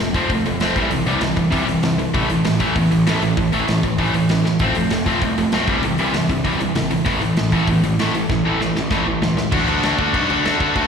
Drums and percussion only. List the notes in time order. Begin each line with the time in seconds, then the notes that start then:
0.14 kick, open hi-hat
0.30 kick, open hi-hat
0.46 open hi-hat
0.60 snare, open hi-hat
0.76 kick, open hi-hat
0.91 open hi-hat
1.06 open hi-hat
1.21 snare, open hi-hat
1.37 kick, open hi-hat
1.52 kick, open hi-hat
1.69 open hi-hat
1.83 snare, open hi-hat
1.99 open hi-hat
2.14 kick, open hi-hat
2.30 open hi-hat
2.45 snare, open hi-hat
2.60 kick, open hi-hat
2.76 kick, open hi-hat
2.92 open hi-hat
3.07 snare, open hi-hat
3.22 open hi-hat
3.37 kick, open hi-hat
3.53 open hi-hat
3.68 snare, open hi-hat
3.83 kick, open hi-hat
3.99 kick, open hi-hat
4.14 open hi-hat
4.29 snare, open hi-hat
4.45 snare
4.59 kick, open hi-hat
4.75 open hi-hat
4.90 snare, open hi-hat
5.06 kick, open hi-hat
5.22 kick, open hi-hat
5.38 open hi-hat
5.52 snare, open hi-hat
5.68 kick, open hi-hat
5.83 open hi-hat
5.98 open hi-hat
6.14 snare, open hi-hat
6.29 kick, open hi-hat
6.45 kick, open hi-hat
6.61 open hi-hat
6.75 snare, open hi-hat
6.91 open hi-hat
7.06 kick, open hi-hat
7.22 open hi-hat
7.37 snare, open hi-hat
7.52 kick, open hi-hat
7.67 kick, open hi-hat
7.84 open hi-hat
7.99 snare, open hi-hat
8.14 open hi-hat
8.30 kick, snare
8.61 snare
8.75 snare
8.90 kick, snare
9.22 snare
9.37 snare
9.52 kick, crash
9.68 crash
9.83 snare, crash
9.99 kick, crash
10.14 kick, crash
10.30 crash
10.45 snare, crash
10.60 kick, crash
10.76 kick, crash